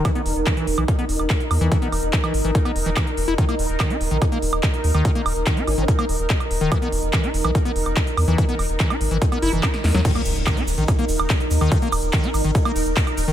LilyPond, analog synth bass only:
\new Staff \with { instrumentName = "Analog synth bass" } { \clef bass \time 4/4 \tempo 4 = 144 r8 e,,16 e,,16 r8 e,,16 b,,16 r8 e,,16 e,,16 r8 e,16 e,16 | r8 e,,16 e,,16 r8 aes,,16 aes,,16 r8 e,,16 e,,16 r8 e,,16 e,,16 | r8 ees,,16 ees,,16 r8 ees,,16 bes,,16 r8 ees,,16 ees,,16 r8 ees,16 ees,16 | r8 ees,,16 ees,,16 r8 aes,,16 aes,,16 r8 ees,,16 ees,,16 r8 ees,,16 ees,,16 |
r8 e,,16 e,,16 r8 e,,16 b,,16 r8 e,,16 e,,16 r8 e,16 e,16 | r8 e,,16 e,,16 r8 aes,,16 aes,,16 r8 ges,,16 ges,,16 r8 e,16 e,16 | r8 ees,,16 ees,,16 r8 ees,,16 bes,,16 r8 ees,,16 ees,,16 r8 ees,16 ees,16 | r8 ees,,16 ees,,16 r8 aes,,16 aes,,16 r8 ees,,16 ees,,16 r8 ees,,16 ees,,16 | }